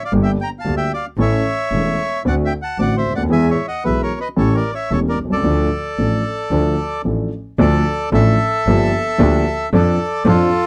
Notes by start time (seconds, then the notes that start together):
0.05 D5 F5
0.12 G1 G2 D3 G3 A#3 G4
0.23 E5 G5
0.41 G5 A#5
0.59 F5 A5
0.64 D2 D3 G3 A#3 G4
0.77 E5 G5
0.94 D5 F5
1.18 A1 A2 E3 A3 C#4 A4 C#5
1.22 E5
1.72 E1 E2 E3 A3 C#4 A4
2.25 D2 D3 A3 C4 F#4 D5 F#5
2.45 E5 G5
2.62 F#5 A5
2.78 A1 A2 D3 A3 C4 F#4 D5 F#5
2.97 C5 E5
3.06 D2
3.10 C#2
3.15 D2 D5 F#5
3.23 D#2
3.29 E2 E3 G#3 B3 G#4 E5 G#5
3.50 C#5 E5
3.67 D#5 F#5
3.85 B1 B2 E3 G#3 B3 G#4 B4 E5
4.02 A#4 C#5
4.20 B4 D#5
4.36 A1 A2 E3 A3 C#4 G4 A4 C#5
4.55 A#4 D5
4.74 C#5 E5
4.91 E1 E2 E3 A3 C#4 G4 A4 C#5
5.09 A#4 D5
5.18 C2
5.25 B1
5.30 C2 A4 D5
5.37 C#2
5.44 D2 D3 F3 A3 D4 A4
5.98 A1 A2 F3 A3 D4 A4
6.51 D2 D3 F3 A3 D4 A4
7.05 A1 A2 F3 A3 D4 A4
7.58 D2 D3 F3 A3 D4 A4 D5
8.12 A1 A2 F3 A3 D4 A4 E5
8.66 G1 G2 F3 A#3 D4 G4
9.18 D2 D3 F3 A#3 D4 G4
9.73 F2 F3 C4 D4 A4 D5
10.25 F2 F3 C4 D4 F4 A4